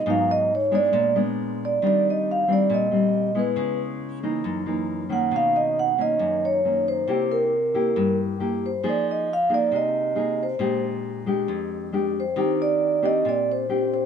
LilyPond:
<<
  \new Staff \with { instrumentName = "Vibraphone" } { \time 4/4 \key ais \phrygian \tempo 4 = 136 eis''8 dis''8 cis''8 d''4 r4 d''8 | \key ees \major d''8 ees''8 f''8 d''8 ees''4. ces''8~ | ces''8 r2. ges''8 | f''8 dis''8 fis''8 dis''4 cis''4 c''8~ |
c''8 bes'2 r4 c''8 | d''8 ees''8 f''8 d''8 ees''4. c''8~ | c''8 r2. c''8~ | c''8 d''4 ees''8 d''8 c''4 c''8 | }
  \new Staff \with { instrumentName = "Nylon-string guitar" } { \time 4/4 \key ais \phrygian << { <fis b dis'>4 r8 <gis b d'>4 <gis b d'>4. | \key ees \major <g c' d'>4. <g c' d'>4 <g c'>4 <aes ces' fes'>8~ | <aes ces' fes'>4. <fes bes ees'>4 <fes bes ees'>4 <ees bes des'>8~ | <ees bes des'>4. <dis ais cis'>4. <dis ais cis'>4 |
<bes e' g'>4 r8 <bes e' g'>4. <bes e' g'>8 r8 | <bes ees' aes'>4 r8 <bes ees' aes'>4. <bes ees' aes'>8 r8 | <aes d' g'>4. <aes d' g'>4. <aes d' g'>8 r8 | <c' d' g'>4. <c' d' g'>4. <c' d' g'>4 | } \\ { gis,2 ais,2 | ees2 bes,2 | des2 ges,2 | b,2 fis,2 |
c2 g,2 | f2 c2 | bes,2 f,2 | ees2 bes,2 | } >> }
>>